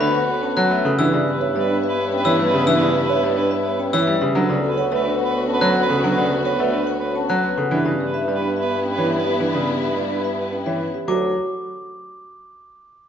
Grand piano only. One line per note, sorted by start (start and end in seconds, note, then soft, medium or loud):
0.01 0.19 D3 medium
0.57 0.75 F#3 medium
0.71 0.89 A3 medium
0.85 1.03 C#3 medium
0.99 1.17 E3 medium
1.13 1.31 C#3 medium
1.55 1.73 G3 medium
2.25 2.43 E3 medium
2.40 2.57 G3 medium
2.54 2.71 C#3 medium
2.67 2.85 E3 medium
2.81 2.99 C#3 medium
3.23 3.41 G3 medium
3.93 4.12 E3 medium
4.07 4.25 G3 medium
4.21 4.40 C#3 medium
4.35 4.53 F#3 medium
4.49 4.68 C#3 medium
4.92 5.10 A3 medium
5.61 5.80 F#3 medium
5.90 6.08 C#3 medium
6.04 6.22 F#3 medium
6.18 6.36 C#3 medium
6.60 6.78 A3 medium
7.30 7.48 F#3 medium
7.57 7.76 C#3 medium
7.71 7.90 E3 medium
7.85 8.04 C#3 medium
8.28 8.46 G3 soft
8.98 9.16 E3 medium
9.40 9.58 E3 medium
9.54 9.72 C#3 medium
9.96 10.14 G3 soft
10.66 10.84 E3 medium
11.08 11.34 F#3 medium